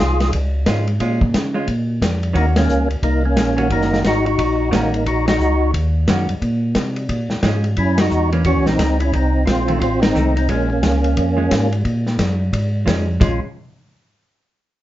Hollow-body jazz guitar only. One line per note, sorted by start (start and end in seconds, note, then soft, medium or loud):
0.67 0.86 G#3 medium
0.67 0.86 C#4 medium
0.67 0.86 F4 medium
1.00 1.19 G#3 medium
1.00 1.20 C#4 medium
1.00 1.20 F4 medium
1.54 1.66 G#3 medium
1.54 1.67 C#4 medium
1.54 1.67 F4 medium
2.33 2.53 D#3 medium
2.33 2.54 A#3 medium
2.33 2.54 C#4 medium
2.33 2.54 F#4 medium
3.57 4.01 D#3 medium
3.57 4.02 A#3 medium
3.57 4.02 C#4 medium
3.57 4.02 F#4 medium
4.71 4.91 D#3 medium
4.71 4.91 A#3 medium
4.71 4.91 C#4 medium
4.71 4.92 F#4 medium
6.08 6.27 D#3 medium
6.08 6.27 A#3 medium
6.08 6.27 C#4 medium
6.08 6.27 F#4 medium
7.44 7.63 F3 medium
7.44 7.63 G#3 medium
7.44 7.63 C#4 medium
8.33 8.77 E3 medium
8.33 8.77 A#3 medium
8.33 8.77 C#4 medium
9.68 9.79 D#3 medium
9.68 9.80 A3 medium
9.68 9.80 C4 medium
10.15 10.34 D#3 medium
10.15 10.34 A3 medium
10.15 10.35 C4 medium
10.49 10.68 F3 soft
10.49 10.68 G#3 medium
10.49 10.68 C#4 medium
11.37 11.49 F3 medium
11.37 11.49 G#3 medium
11.37 11.49 C#4 medium
12.86 13.05 F3 medium
12.86 13.05 G#3 medium
12.86 13.05 C#4 medium
13.20 13.39 F3 medium
13.20 13.39 G#3 medium
13.20 13.40 C#4 medium